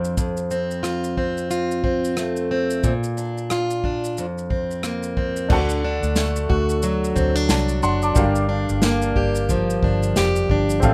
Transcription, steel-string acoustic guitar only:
0, 0, Header, 1, 2, 480
1, 0, Start_track
1, 0, Tempo, 665188
1, 129, Time_signature, 4, 2, 24, 8
1, 7893, End_track
2, 0, Start_track
2, 0, Title_t, "Steel-string acoustic guitar"
2, 0, Program_c, 0, 25
2, 0, Note_on_c, 0, 41, 68
2, 0, Note_on_c, 0, 60, 52
2, 117, Note_off_c, 0, 41, 0
2, 126, Note_on_c, 0, 41, 75
2, 368, Note_off_c, 0, 60, 0
2, 368, Note_on_c, 0, 60, 53
2, 598, Note_on_c, 0, 65, 56
2, 840, Note_off_c, 0, 60, 0
2, 849, Note_on_c, 0, 60, 54
2, 1084, Note_off_c, 0, 65, 0
2, 1087, Note_on_c, 0, 65, 57
2, 1320, Note_off_c, 0, 60, 0
2, 1329, Note_on_c, 0, 60, 49
2, 1570, Note_on_c, 0, 57, 57
2, 1803, Note_off_c, 0, 60, 0
2, 1812, Note_on_c, 0, 60, 55
2, 2048, Note_off_c, 0, 41, 0
2, 2049, Note_on_c, 0, 46, 75
2, 2108, Note_off_c, 0, 57, 0
2, 2108, Note_off_c, 0, 60, 0
2, 2289, Note_on_c, 0, 62, 55
2, 2533, Note_off_c, 0, 65, 0
2, 2535, Note_on_c, 0, 65, 59
2, 2766, Note_off_c, 0, 62, 0
2, 2775, Note_on_c, 0, 62, 51
2, 3010, Note_off_c, 0, 46, 0
2, 3018, Note_on_c, 0, 41, 69
2, 3070, Note_off_c, 0, 62, 0
2, 3070, Note_off_c, 0, 65, 0
2, 3249, Note_on_c, 0, 60, 47
2, 3491, Note_on_c, 0, 58, 55
2, 3723, Note_off_c, 0, 60, 0
2, 3732, Note_on_c, 0, 60, 50
2, 3972, Note_on_c, 0, 50, 75
2, 4028, Note_off_c, 0, 58, 0
2, 4029, Note_off_c, 0, 60, 0
2, 4032, Note_off_c, 0, 41, 0
2, 4217, Note_on_c, 0, 62, 57
2, 4447, Note_on_c, 0, 57, 56
2, 4687, Note_on_c, 0, 66, 65
2, 4933, Note_on_c, 0, 54, 68
2, 5161, Note_off_c, 0, 62, 0
2, 5164, Note_on_c, 0, 60, 57
2, 5308, Note_off_c, 0, 60, 0
2, 5308, Note_on_c, 0, 62, 56
2, 5404, Note_off_c, 0, 66, 0
2, 5412, Note_on_c, 0, 66, 68
2, 5640, Note_off_c, 0, 62, 0
2, 5649, Note_on_c, 0, 62, 61
2, 5889, Note_on_c, 0, 43, 81
2, 5947, Note_off_c, 0, 57, 0
2, 5949, Note_off_c, 0, 54, 0
2, 5949, Note_off_c, 0, 66, 0
2, 6122, Note_off_c, 0, 62, 0
2, 6125, Note_on_c, 0, 62, 61
2, 6371, Note_on_c, 0, 58, 66
2, 6498, Note_off_c, 0, 50, 0
2, 6612, Note_on_c, 0, 67, 65
2, 6856, Note_on_c, 0, 53, 66
2, 7088, Note_off_c, 0, 62, 0
2, 7101, Note_on_c, 0, 62, 54
2, 7336, Note_off_c, 0, 67, 0
2, 7339, Note_on_c, 0, 67, 72
2, 7574, Note_off_c, 0, 62, 0
2, 7583, Note_on_c, 0, 62, 63
2, 7811, Note_off_c, 0, 43, 0
2, 7817, Note_on_c, 0, 45, 89
2, 7870, Note_off_c, 0, 58, 0
2, 7875, Note_off_c, 0, 62, 0
2, 7893, Note_off_c, 0, 45, 0
2, 7893, Note_off_c, 0, 53, 0
2, 7893, Note_off_c, 0, 67, 0
2, 7893, End_track
0, 0, End_of_file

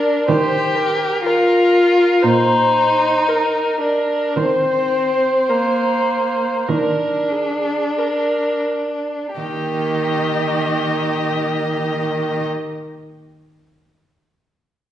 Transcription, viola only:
0, 0, Header, 1, 2, 480
1, 0, Start_track
1, 0, Key_signature, -3, "major"
1, 0, Tempo, 977199
1, 137, Time_signature, 4, 2, 24, 8
1, 1093, Tempo, 1047120
1, 1573, Tempo, 1107011
1, 2533, Tempo, 1192843
1, 3013, Tempo, 1298701
1, 3493, Tempo, 1415094
1, 3973, Tempo, 1312910
1, 5990, End_track
2, 0, Start_track
2, 0, Title_t, "Viola"
2, 0, Program_c, 0, 41
2, 0, Note_on_c, 0, 70, 49
2, 135, Note_off_c, 0, 70, 0
2, 139, Note_on_c, 0, 72, 44
2, 371, Note_on_c, 0, 70, 40
2, 379, Note_off_c, 0, 72, 0
2, 608, Note_off_c, 0, 70, 0
2, 610, Note_on_c, 0, 70, 44
2, 1094, Note_on_c, 0, 72, 44
2, 1101, Note_off_c, 0, 70, 0
2, 1579, Note_on_c, 0, 70, 36
2, 1586, Note_off_c, 0, 72, 0
2, 1807, Note_off_c, 0, 70, 0
2, 1810, Note_on_c, 0, 70, 37
2, 2048, Note_on_c, 0, 72, 42
2, 2055, Note_off_c, 0, 70, 0
2, 3013, Note_on_c, 0, 70, 31
2, 3019, Note_off_c, 0, 72, 0
2, 3249, Note_on_c, 0, 68, 26
2, 3255, Note_off_c, 0, 70, 0
2, 3494, Note_on_c, 0, 70, 25
2, 3499, Note_off_c, 0, 68, 0
2, 3734, Note_off_c, 0, 70, 0
2, 3972, Note_on_c, 0, 58, 25
2, 5088, Note_off_c, 0, 58, 0
2, 5990, End_track
0, 0, End_of_file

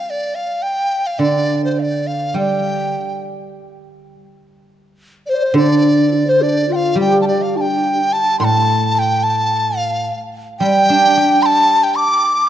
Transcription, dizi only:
0, 0, Header, 1, 2, 480
1, 0, Start_track
1, 0, Tempo, 578035
1, 46, Time_signature, 2, 2, 24, 8
1, 6766, Tempo, 548948
1, 10564, End_track
2, 0, Start_track
2, 0, Title_t, "Dizi"
2, 0, Program_c, 0, 73
2, 50, Note_on_c, 0, 77, 66
2, 83, Note_on_c, 0, 74, 72
2, 92, Note_off_c, 0, 77, 0
2, 291, Note_on_c, 0, 77, 81
2, 304, Note_off_c, 0, 74, 0
2, 518, Note_on_c, 0, 79, 77
2, 530, Note_off_c, 0, 77, 0
2, 885, Note_on_c, 0, 77, 69
2, 898, Note_off_c, 0, 79, 0
2, 987, Note_on_c, 0, 74, 81
2, 1000, Note_off_c, 0, 77, 0
2, 1347, Note_off_c, 0, 74, 0
2, 1368, Note_on_c, 0, 72, 58
2, 1488, Note_on_c, 0, 77, 61
2, 1500, Note_off_c, 0, 72, 0
2, 1515, Note_on_c, 0, 74, 67
2, 1524, Note_off_c, 0, 77, 0
2, 1718, Note_on_c, 0, 77, 75
2, 1731, Note_off_c, 0, 74, 0
2, 1955, Note_on_c, 0, 79, 76
2, 1967, Note_off_c, 0, 77, 0
2, 2685, Note_off_c, 0, 79, 0
2, 4368, Note_on_c, 0, 74, 62
2, 4397, Note_on_c, 0, 72, 67
2, 4405, Note_off_c, 0, 74, 0
2, 4593, Note_off_c, 0, 72, 0
2, 4623, Note_on_c, 0, 74, 79
2, 5225, Note_on_c, 0, 72, 67
2, 5237, Note_off_c, 0, 74, 0
2, 5337, Note_on_c, 0, 74, 78
2, 5349, Note_off_c, 0, 72, 0
2, 5584, Note_on_c, 0, 79, 77
2, 5596, Note_off_c, 0, 74, 0
2, 5610, Note_on_c, 0, 77, 84
2, 5619, Note_off_c, 0, 79, 0
2, 5812, Note_off_c, 0, 77, 0
2, 5817, Note_on_c, 0, 79, 93
2, 5980, Note_off_c, 0, 79, 0
2, 5993, Note_on_c, 0, 81, 57
2, 6039, Note_off_c, 0, 81, 0
2, 6044, Note_on_c, 0, 74, 74
2, 6163, Note_on_c, 0, 77, 69
2, 6175, Note_off_c, 0, 74, 0
2, 6283, Note_on_c, 0, 81, 75
2, 6295, Note_off_c, 0, 77, 0
2, 6319, Note_on_c, 0, 79, 81
2, 6327, Note_off_c, 0, 81, 0
2, 6749, Note_on_c, 0, 81, 104
2, 6762, Note_off_c, 0, 79, 0
2, 6978, Note_off_c, 0, 81, 0
2, 6984, Note_on_c, 0, 84, 99
2, 7024, Note_on_c, 0, 81, 107
2, 7033, Note_off_c, 0, 84, 0
2, 7469, Note_off_c, 0, 81, 0
2, 7469, Note_on_c, 0, 81, 88
2, 7501, Note_on_c, 0, 79, 95
2, 7510, Note_off_c, 0, 81, 0
2, 7716, Note_on_c, 0, 81, 102
2, 7729, Note_off_c, 0, 79, 0
2, 8188, Note_on_c, 0, 77, 83
2, 8201, Note_off_c, 0, 81, 0
2, 8559, Note_off_c, 0, 77, 0
2, 8903, Note_on_c, 0, 79, 121
2, 9630, Note_on_c, 0, 84, 96
2, 9643, Note_off_c, 0, 79, 0
2, 9659, Note_on_c, 0, 81, 104
2, 9668, Note_off_c, 0, 84, 0
2, 9989, Note_on_c, 0, 79, 86
2, 10003, Note_off_c, 0, 81, 0
2, 10104, Note_on_c, 0, 86, 102
2, 10117, Note_off_c, 0, 79, 0
2, 10558, Note_off_c, 0, 86, 0
2, 10564, End_track
0, 0, End_of_file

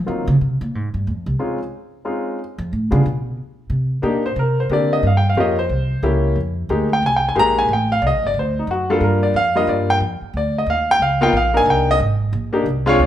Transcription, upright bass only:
0, 0, Header, 1, 3, 480
1, 0, Start_track
1, 0, Tempo, 331675
1, 1522, Time_signature, 4, 2, 24, 8
1, 18905, End_track
2, 0, Start_track
2, 0, Title_t, "Upright bass"
2, 0, Program_c, 0, 32
2, 112, Note_on_c, 0, 51, 80
2, 388, Note_off_c, 0, 51, 0
2, 397, Note_on_c, 0, 49, 94
2, 564, Note_off_c, 0, 49, 0
2, 596, Note_on_c, 0, 48, 71
2, 874, Note_off_c, 0, 48, 0
2, 882, Note_on_c, 0, 46, 84
2, 1086, Note_off_c, 0, 46, 0
2, 1086, Note_on_c, 0, 44, 74
2, 1351, Note_off_c, 0, 44, 0
2, 1359, Note_on_c, 0, 43, 81
2, 1549, Note_on_c, 0, 41, 73
2, 1571, Note_off_c, 0, 43, 0
2, 1819, Note_off_c, 0, 41, 0
2, 1828, Note_on_c, 0, 36, 80
2, 1933, Note_off_c, 0, 36, 0
2, 3740, Note_on_c, 0, 41, 86
2, 3913, Note_off_c, 0, 41, 0
2, 3946, Note_on_c, 0, 45, 77
2, 4216, Note_off_c, 0, 45, 0
2, 4224, Note_on_c, 0, 49, 102
2, 4395, Note_off_c, 0, 49, 0
2, 4422, Note_on_c, 0, 47, 79
2, 4858, Note_off_c, 0, 47, 0
2, 5349, Note_on_c, 0, 48, 82
2, 5820, Note_off_c, 0, 48, 0
2, 5832, Note_on_c, 0, 46, 80
2, 6302, Note_off_c, 0, 46, 0
2, 6309, Note_on_c, 0, 48, 92
2, 6780, Note_off_c, 0, 48, 0
2, 6794, Note_on_c, 0, 50, 88
2, 7263, Note_off_c, 0, 50, 0
2, 7274, Note_on_c, 0, 43, 88
2, 7732, Note_off_c, 0, 43, 0
2, 7741, Note_on_c, 0, 41, 84
2, 8217, Note_off_c, 0, 41, 0
2, 8240, Note_on_c, 0, 36, 82
2, 8707, Note_off_c, 0, 36, 0
2, 8720, Note_on_c, 0, 37, 89
2, 9188, Note_off_c, 0, 37, 0
2, 9199, Note_on_c, 0, 41, 78
2, 9667, Note_off_c, 0, 41, 0
2, 9683, Note_on_c, 0, 38, 86
2, 10150, Note_off_c, 0, 38, 0
2, 10163, Note_on_c, 0, 36, 90
2, 10630, Note_off_c, 0, 36, 0
2, 10649, Note_on_c, 0, 34, 89
2, 11113, Note_off_c, 0, 34, 0
2, 11119, Note_on_c, 0, 33, 87
2, 11588, Note_off_c, 0, 33, 0
2, 11603, Note_on_c, 0, 36, 91
2, 11757, Note_off_c, 0, 36, 0
2, 11757, Note_on_c, 0, 33, 65
2, 11906, Note_off_c, 0, 33, 0
2, 11915, Note_on_c, 0, 31, 67
2, 12058, Note_off_c, 0, 31, 0
2, 12067, Note_on_c, 0, 38, 85
2, 12542, Note_off_c, 0, 38, 0
2, 12548, Note_on_c, 0, 42, 84
2, 13022, Note_off_c, 0, 42, 0
2, 13032, Note_on_c, 0, 43, 86
2, 13504, Note_off_c, 0, 43, 0
2, 13517, Note_on_c, 0, 41, 85
2, 13987, Note_off_c, 0, 41, 0
2, 13995, Note_on_c, 0, 43, 86
2, 14466, Note_off_c, 0, 43, 0
2, 14476, Note_on_c, 0, 41, 85
2, 14762, Note_off_c, 0, 41, 0
2, 14956, Note_on_c, 0, 38, 80
2, 15426, Note_off_c, 0, 38, 0
2, 15432, Note_on_c, 0, 39, 86
2, 15899, Note_off_c, 0, 39, 0
2, 15907, Note_on_c, 0, 37, 83
2, 16382, Note_off_c, 0, 37, 0
2, 16392, Note_on_c, 0, 34, 91
2, 16864, Note_off_c, 0, 34, 0
2, 16871, Note_on_c, 0, 36, 93
2, 17343, Note_off_c, 0, 36, 0
2, 17360, Note_on_c, 0, 32, 92
2, 17828, Note_off_c, 0, 32, 0
2, 17838, Note_on_c, 0, 34, 97
2, 18307, Note_off_c, 0, 34, 0
2, 18318, Note_on_c, 0, 36, 91
2, 18787, Note_off_c, 0, 36, 0
2, 18800, Note_on_c, 0, 38, 87
2, 18905, Note_off_c, 0, 38, 0
2, 18905, End_track
3, 0, Start_track
3, 0, Title_t, "Muted upright bass strokes"
3, 14779, Note_on_c, 9, 29, 43
3, 14924, Note_off_c, 9, 29, 0
3, 18905, End_track
0, 0, End_of_file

